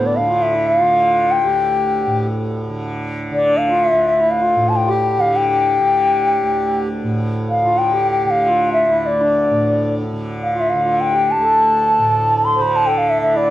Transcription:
Already playing: tanpura D2 A2 D3, harmonium B3
0.06 bansuri D5
0.16 harmonium D4, bansuri F5
0.20 tanpura D3
0.27 harmonium F4
0.42 bansuri E5
0.53 harmonium E4
0.67 bansuri E5
0.79 harmonium F4, bansuri F5
0.83 tanpura D3
1.31 bansuri G5
1.44 tanpura D2, harmonium G4
2.06 tanpura A2
2.69 tanpura D3
3.31 tanpura D3, bansuri D5
3.45 harmonium D4
3.57 bansuri F5
3.69 harmonium F4
3.85 bansuri E5
3.93 tanpura D2
4.08 bansuri E5
4.18 harmonium E4
4.31 bansuri F5
4.40 harmonium F4
4.55 tanpura A2
4.69 bansuri A5
4.76 bansuri G5
4.87 harmonium G4
5.18 tanpura D3, bansuri F5
5.36 bansuri G5
5.48 harmonium G4
5.80 tanpura D3
6.43 tanpura D2
7.03 tanpura A2
7.50 bansuri F5
7.64 tanpura D3, harmonium F4
7.78 bansuri G5
7.92 harmonium G4
8.11 bansuri G5
8.26 tanpura D3, bansuri G5
8.30 bansuri F5
8.46 harmonium F4
8.73 bansuri E5
8.89 tanpura D2, harmonium E4
9.01 bansuri E5
9.06 bansuri D5
9.20 harmonium D4
9.50 tanpura A2
10.13 tanpura D3
10.43 bansuri F5
10.54 harmonium F4
10.60 bansuri E5
10.70 bansuri F5
10.75 tanpura D3
10.83 harmonium F4
11.00 bansuri G5
11.12 harmonium G4
11.31 bansuri A5
11.37 tanpura D2
11.42 harmonium A4
11.98 tanpura A2
12.45 bansuri C6
12.56 tanpura D3, harmonium C5
12.61 bansuri B5
12.76 bansuri A5
12.86 harmonium A4, bansuri G5
12.95 bansuri F5 G5
13.10 bansuri E5
13.22 tanpura D3, bansuri E5
13.33 harmonium E4, bansuri D5
13.47 harmonium D4

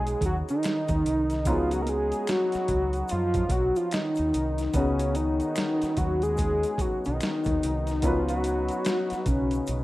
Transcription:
Already playing: fingered electric bass B1, grand piano B3 C#4 D#4 F#4 G#4, analog synth lead G#4
0.07 closed hi-hat, shaker
0.21 fingered electric bass D#2, kick, closed hi-hat, shaker
0.26 analog synth lead F#4
0.49 analog synth lead D#4, closed hi-hat, shaker
0.63 finger snap, snare, closed hi-hat, shaker
0.88 fingered electric bass D#2, kick, closed hi-hat, shaker
1.06 fingered electric bass C2, closed hi-hat, shaker
1.30 snare, closed hi-hat, shaker
1.45 fingered electric bass C#2, grand piano B3 C#4 D#4, analog synth lead F4, kick, closed hi-hat, shaker
1.49 grand piano F#3 G#4
1.71 analog synth lead F#4, closed hi-hat, shaker
1.82 analog synth lead A#4
1.87 analog synth lead G#4, closed hi-hat, shaker
2.12 closed hi-hat, shaker
2.27 analog synth lead F#4, finger snap, snare, closed hi-hat, shaker
2.52 muted fingered electric bass stroke, snare, closed hi-hat, shaker
2.68 fingered electric bass C#2, kick, closed hi-hat, shaker
2.93 closed hi-hat, shaker
3.08 analog synth lead F4, closed hi-hat, shaker
3.12 fingered electric bass F#2
3.34 kick, closed hi-hat, shaker
3.49 fingered electric bass B1, analog synth lead F#4, kick, closed hi-hat, shaker
3.76 analog synth lead F4, closed hi-hat, shaker
3.91 analog synth lead D#4, finger snap, snare, closed hi-hat, shaker
4.15 closed hi-hat, shaker
4.20 fingered electric bass D#2
4.34 fingered electric bass C2, closed hi-hat, shaker
4.58 snare, closed hi-hat, shaker
4.73 fingered electric bass C#2, grand piano B3 C#4 D#4 F#4, tonewheel organ B3 C#4 D#4 F#4, analog synth lead C#4, kick, closed hi-hat, shaker
4.78 grand piano G#4
4.99 closed hi-hat, shaker
5.15 analog synth lead D#4, closed hi-hat, shaker
5.40 closed hi-hat, shaker
5.56 finger snap, snare, closed hi-hat, shaker
5.82 muted fingered electric bass stroke, snare, closed hi-hat, shaker
5.97 fingered electric bass D#2, analog synth lead F#4, kick, closed hi-hat, shaker
6.22 analog synth lead G#4, closed hi-hat, shaker
6.37 kick, closed hi-hat, shaker
6.63 closed hi-hat, shaker
6.78 analog synth lead F#4, muted fingered electric bass stroke, kick, closed hi-hat, shaker
7.05 fingered electric bass B1, analog synth lead D#4, closed hi-hat, shaker
7.21 finger snap, snare, closed hi-hat, shaker
7.44 fingered electric bass D#2, kick, closed hi-hat, shaker
7.63 fingered electric bass C2, closed hi-hat, shaker
7.87 snare, closed hi-hat, shaker
8.02 fingered electric bass C#2, grand piano B3 C#4 D#4 F#4, analog synth lead F4, kick, closed hi-hat, shaker
8.06 grand piano B4
8.29 analog synth lead F#4, closed hi-hat, shaker
8.44 closed hi-hat, shaker
8.68 closed hi-hat, shaker
8.85 finger snap, snare, closed hi-hat, shaker
9.10 muted fingered electric bass stroke, snare, closed hi-hat, shaker
9.26 fingered electric bass B1, analog synth lead C#4, kick, closed hi-hat, shaker
9.51 closed hi-hat, shaker
9.67 fingered electric bass B1, closed hi-hat, shaker

